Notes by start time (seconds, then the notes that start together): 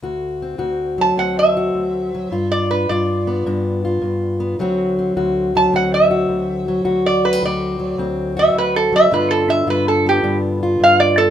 0.02 D2 F#4
0.42 C4
0.58 D2 F#4
0.98 F#3 A5
1.16 D2 C4 F#5
1.39 E5
1.57 F#4
1.74 D2
2.15 F#3
2.32 G2 F4
2.52 D5
2.71 D4 B4
2.89 G2 F4 D5
3.27 B3
3.46 G2 D4
3.85 F4
4.02 G2
4.40 B3
4.59 D2 D3 F#3 C4 F#4
4.99 C4
5.17 D2 F#4
5.55 F#3 A5
5.73 D2 C4 F#5
5.94 E5
6.11 F#4
6.29 D2
6.68 F#3
6.85 D2 F#4
7.06 D5
7.24 A3 B4
7.33 C4
7.42 D2 F#4 D5
7.79 F#3
7.98 D2 C4
8.37 F#4 E5
8.54 D2
8.58 B4
8.76 A4
8.92 F#3 E5
9.10 G2 D3 B3 D4 F4 B4
9.31 A4
9.49 D4 E5
9.67 G2 F4 B4
9.88 A4
10.06 B3 G4
10.23 G2 D4
10.63 F4
10.80 G2 F5
11.00 D5
11.17 B3 A4